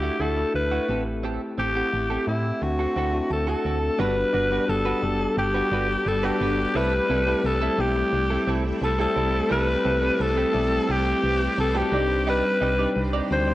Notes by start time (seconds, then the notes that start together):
Already playing: D2 A3 D4 E4 F#4 G4
0.02 A3 E4 F#4
0.19 D2 A3 D4 E4 F#4 A4
0.36 A3 D4 E4 A4, muted clean electric guitar stroke
0.54 D2 B4, muted clean electric guitar stroke
0.71 A3 E4 F#4
0.88 A1 A3 C4 E4 G4 A4
1.07 muted clean electric guitar stroke
1.23 C4 G4 A4
1.58 A1 C4 G4 A4
1.75 A3 C4 E4 G4 A4 F#5
1.93 A1, muted clean electric guitar stroke
2.10 C4 G4 A4
2.26 A2 A3 C4 E4 G4, muted clean electric guitar stroke
2.44 muted clean electric guitar stroke
2.61 D2 A3 C4 D4 F#4, muted clean electric guitar stroke
2.79 C4 F#4 A4
2.95 D2 A3 C4 D4 E4 F#4 A4
3.12 A3 C4 D4 F#4, muted clean electric guitar stroke
3.30 D2 A4 A5, muted clean electric guitar stroke
3.47 C4 F#4 A4 A5
3.64 D2 C4 F#4 A4
3.82 muted clean electric guitar stroke
3.98 G1 G3 B3 D4 F#4 G4 B4 B5
4.33 G1 D4 F#4 B4
4.51 G3 B3 D4 F#4 G4 B4
4.69 G1 A4 A5, muted clean electric guitar stroke
4.85 D4 F#4 B4
5.02 F#1 G3 B3 D4 G4 A4, muted clean electric guitar stroke
5.20 muted clean electric guitar stroke
5.37 G1 G4 G5, muted clean electric guitar stroke
5.54 D4 F#4 B4
5.71 G1 D4 F#4 B4
5.89 muted clean electric guitar stroke
6.06 G1 A4 A5, muted clean electric guitar stroke
6.23 G3 B3 D4 F#4 G4 A4 B4 G5
6.40 G1 G3 B3 D4 F#4 G4 B4
6.58 muted clean electric guitar stroke
6.74 C2 G3 A3 C4 E4 G4 A4 B4 B5
7.09 C2 C4 E4 A4
7.26 G3 A3 C4 E4 G4 A4
7.44 C2 A4 A5, muted clean electric guitar stroke
7.61 C4 E4 A4
7.78 B1 G3 A3 C4 E4 G4 G5, muted clean electric guitar stroke
7.96 muted clean electric guitar stroke
8.13 C2, muted clean electric guitar stroke
8.30 C4 E4 A4
8.47 C2 C4 E4 A4
8.64 muted clean electric guitar stroke
8.81 C2 A4 A5, muted clean electric guitar stroke
8.99 G3 A3 C4 E4 G4 A4 A5
9.15 C2 G3 A3 C4 E4 A4
9.35 muted clean electric guitar stroke
9.50 C2 G3 A3 C4 E4 G4 A4 B4 B5
9.84 C2 C4 G4 A4
10.02 G3 A3 C4 E4 G4 A4
10.19 C2 A4 A5, muted clean electric guitar stroke
10.37 C4 G4 A4
10.53 B1 G3 A3 C4 E4 G4, muted clean electric guitar stroke
10.71 muted clean electric guitar stroke
10.89 C2 G4 G5, muted clean electric guitar stroke
11.06 muted clean electric guitar stroke
11.23 C2
11.40 muted clean electric guitar stroke
11.58 C2 A4 A5, muted clean electric guitar stroke
11.74 G3 A3 C4 E4 F#4 G4 A4 G5
11.92 C2 C3 G3 C4 D4 D#4 G4 D5
12.10 muted clean electric guitar stroke
12.27 D#4 G4 B4 D5 B5
12.61 C2 D#4 G4 D5
12.78 G3 C4 D4 D#4 G4 D5
12.96 C2, muted clean electric guitar stroke
13.13 D#4 G4 D5
13.30 D2 G3 C4 D4 D#4 F#4 C5 C6, muted clean electric guitar stroke
13.38 G4
13.47 muted clean electric guitar stroke